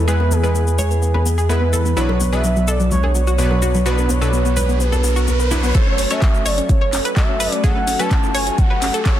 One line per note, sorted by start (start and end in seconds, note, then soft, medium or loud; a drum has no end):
0.00 1.95 E2 medium
0.00 1.93 E3 medium
0.00 1.93 E4 medium
0.00 1.93 G#4 medium
0.00 1.93 B4 medium
0.08 0.41 G#3 loud
0.08 0.41 B3 loud
0.08 0.41 E4 medium
0.08 0.17 G#4 loud
0.08 0.41 B4 loud
0.08 0.34 B4 loud
0.08 shaker soft
0.20 0.29 B3 medium
0.20 high bongo medium
0.31 0.41 B3 medium
0.31 1.51 G#4 loud
0.31 high conga medium
0.31 shaker medium
0.43 1.47 G#3 medium
0.43 1.47 B3 medium
0.43 1.47 E4 medium
0.43 0.52 B4 medium
0.43 1.47 B4 medium
0.43 shaker soft
0.55 0.65 B3 medium
0.55 shaker soft
0.67 0.76 B3 medium
0.67 shaker soft
0.79 0.88 C#5 medium
0.79 low conga medium
0.79 shaker medium
0.91 1.00 B3 medium
0.91 shaker soft
1.02 1.12 B3 medium
1.02 shaker soft
1.14 1.23 B4 medium
1.14 high bongo medium
1.14 high conga medium
1.26 1.35 B3 medium
1.26 shaker medium
1.38 1.47 G#4 medium
1.38 shaker soft
1.49 1.94 G#3 medium
1.49 1.59 B3 medium
1.49 1.94 B3 medium
1.49 1.94 E4 medium
1.49 1.94 B4 loud
1.49 1.98 B4 loud
1.49 high conga medium
1.49 shaker soft
1.62 1.71 B3 medium
1.73 1.83 A4 medium
1.73 high conga medium
1.73 shaker medium
1.85 1.94 B3 medium
1.85 shaker soft
1.97 5.72 B1 medium
1.97 2.30 B2 loud
1.97 2.30 F#3 medium
1.97 5.71 B3 medium
1.97 2.30 B3 medium
1.97 5.71 D4 medium
1.97 2.30 D4 medium
1.97 2.06 E4 loud
1.97 5.71 F#4 medium
1.97 2.30 B4 loud
1.97 2.34 C#5 loud
1.97 riser medium
1.97 shaker soft
2.09 2.18 F#3 medium
2.09 high bongo medium
2.20 2.30 F#3 medium
2.20 high conga medium
2.20 shaker medium
2.33 3.36 B2 medium
2.33 3.36 F#3 medium
2.33 3.36 B3 medium
2.33 3.36 D4 medium
2.33 2.41 G#4 medium
2.33 3.36 B4 medium
2.33 2.69 E5 loud
2.33 shaker soft
2.44 2.54 F#3 medium
2.44 shaker soft
2.56 2.65 F#3 medium
2.56 shaker soft
2.68 2.77 A4 loud
2.68 2.91 D5 medium
2.68 shaker medium
2.80 2.89 F#3 medium
2.80 shaker soft
2.91 3.01 F#3 medium
2.91 3.13 C#5 medium
2.91 low conga medium
2.91 shaker soft
3.03 3.12 G#4 medium
3.03 high bongo medium
3.03 high conga medium
3.15 3.24 F#3 medium
3.15 3.87 C#5 loud
3.15 shaker medium
3.27 3.36 F#4 medium
3.27 shaker soft
3.38 3.83 B2 loud
3.38 3.83 F#3 medium
3.38 3.48 F#3 medium
3.38 3.83 B3 medium
3.38 3.83 D4 medium
3.38 3.83 B4 loud
3.38 high conga medium
3.38 shaker soft
3.51 3.60 F#3 medium
3.51 high bongo medium
3.62 3.72 F#4 medium
3.62 high conga medium
3.62 shaker medium
3.74 3.83 F#3 medium
3.74 shaker soft
3.86 4.19 B2 loud
3.86 4.19 F#3 medium
3.86 4.19 B3 medium
3.86 4.19 D4 medium
3.86 3.95 F#4 loud
3.86 4.19 B4 loud
3.86 4.11 B4 loud
3.86 shaker soft
3.98 4.07 B3 medium
3.98 high bongo medium
3.98 shaker soft
4.09 4.19 B3 medium
4.09 4.82 C#5 loud
4.09 high conga medium
4.09 shaker medium
4.21 5.25 B2 medium
4.21 5.25 F#3 medium
4.21 5.25 B3 medium
4.21 5.25 D4 medium
4.21 4.30 A4 medium
4.21 5.25 B4 medium
4.21 shaker soft
4.33 4.42 B3 medium
4.33 shaker soft
4.45 4.54 B3 medium
4.45 shaker soft
4.57 4.66 B4 loud
4.57 low conga medium
4.57 shaker medium
4.69 4.78 B3 medium
4.69 shaker soft
4.80 4.90 B3 medium
4.80 5.27 B4 medium
4.80 shaker soft
4.92 5.01 A4 medium
4.92 high bongo medium
4.92 high conga medium
4.92 shaker soft
5.04 5.13 B3 medium
5.04 shaker medium
5.16 5.25 F#4 medium
5.16 shaker soft
5.27 5.37 B3 medium
5.27 5.76 B4 loud
5.27 high conga medium
5.27 shaker soft
5.40 5.49 B3 medium
5.40 shaker soft
5.51 5.72 F#3 medium
5.51 5.72 B3 medium
5.51 5.72 D4 medium
5.51 5.61 E4 medium
5.51 5.72 B4 loud
5.51 high conga medium
5.51 shaker medium
5.63 5.72 B3 medium
5.63 shaker soft
5.75 5.89 F#1 loud
5.75 6.08 F#3 loud
5.75 9.20 A3 medium
5.75 6.08 A3 loud
5.75 6.08 C#4 medium
5.75 9.20 F#4 medium
5.75 9.20 A4 medium
5.75 6.08 A4 loud
5.75 5.84 A4 loud
5.75 6.12 C#5 loud
5.75 kick loud
5.75 closed hi-hat medium
5.75 riser medium
5.75 shaker soft
5.87 5.96 C#4 medium
5.98 6.06 F#1 loud
5.98 6.08 C#4 medium
5.98 open hi-hat loud
5.98 shaker medium
6.11 7.14 F#3 medium
6.11 7.14 A3 medium
6.11 7.14 C#4 medium
6.11 7.14 A4 medium
6.11 6.19 C#5 medium
6.11 6.47 E5 loud
6.11 closed hi-hat medium
6.11 shaker soft
6.22 6.37 F#1 medium
6.22 6.32 C#4 medium
6.22 kick loud
6.22 clap loud
6.22 closed hi-hat medium
6.22 shaker soft
6.34 6.43 C#4 medium
6.34 shaker soft
6.46 6.60 F#1 loud
6.46 6.55 C#5 loud
6.46 6.69 D5 loud
6.46 open hi-hat loud
6.46 shaker medium
6.58 6.67 C#4 medium
6.58 closed hi-hat medium
6.58 shaker soft
6.69 6.77 F#1 loud
6.69 6.79 C#4 medium
6.69 7.03 C#5 loud
6.69 kick loud
6.69 closed hi-hat medium
6.69 shaker soft
6.81 6.90 C#5 medium
6.93 7.00 F#1 loud
6.93 7.02 C#4 medium
6.93 clap medium
6.93 open hi-hat loud
6.93 shaker medium
7.05 7.14 B4 medium
7.05 closed hi-hat medium
7.05 shaker soft
7.16 7.24 F#1 loud
7.16 7.61 F#3 medium
7.16 7.61 A3 medium
7.16 7.26 C#4 medium
7.16 7.61 C#4 medium
7.16 7.61 A4 loud
7.16 7.53 E5 loud
7.16 kick loud
7.16 clap loud
7.16 closed hi-hat soft
7.16 shaker soft
7.29 7.38 C#4 medium
7.40 7.48 F#1 loud
7.40 7.50 B4 loud
7.40 open hi-hat loud
7.40 shaker medium
7.52 7.61 C#4 medium
7.52 7.65 D5 loud
7.52 closed hi-hat medium
7.52 shaker soft
7.64 7.78 F#1 loud
7.64 7.97 F#3 loud
7.64 7.97 A3 medium
7.64 7.97 C#4 loud
7.64 7.73 G#4 loud
7.64 7.97 A4 loud
7.64 8.01 F#5 loud
7.64 kick loud
7.64 closed hi-hat medium
7.64 shaker soft
7.76 7.85 C#4 medium
7.87 7.95 F#1 loud
7.87 7.97 C#4 medium
7.87 open hi-hat loud
7.87 shaker medium
7.99 9.03 F#3 medium
7.99 9.03 A3 medium
7.99 9.03 C#4 medium
7.99 9.03 A4 medium
7.99 8.08 B4 medium
7.99 8.36 A5 loud
7.99 closed hi-hat medium
7.99 shaker soft
8.11 8.26 F#1 medium
8.11 8.20 C#4 medium
8.11 kick loud
8.11 clap loud
8.11 closed hi-hat medium
8.11 shaker soft
8.23 8.32 C#4 medium
8.23 shaker soft
8.35 8.49 F#1 loud
8.35 8.44 C#5 loud
8.35 8.60 G#5 loud
8.35 open hi-hat loud
8.35 shaker medium
8.47 8.56 C#4 medium
8.47 closed hi-hat medium
8.47 shaker soft
8.58 8.66 F#1 loud
8.58 8.68 C#4 medium
8.58 8.94 F#5 loud
8.58 kick loud
8.58 closed hi-hat medium
8.58 shaker soft
8.70 8.79 B4 medium
8.82 8.89 F#1 loud
8.82 8.91 C#4 medium
8.82 clap medium
8.82 open hi-hat loud
8.82 shaker medium
8.94 9.03 A4 medium
8.94 closed hi-hat medium
8.94 shaker soft
9.05 9.13 F#1 loud
9.05 9.20 F#3 loud
9.05 9.20 A3 medium
9.05 9.15 C#4 medium
9.05 9.20 C#4 medium
9.05 9.20 A4 loud
9.05 9.20 C#5 loud
9.05 kick loud
9.05 clap loud
9.05 closed hi-hat soft
9.05 shaker soft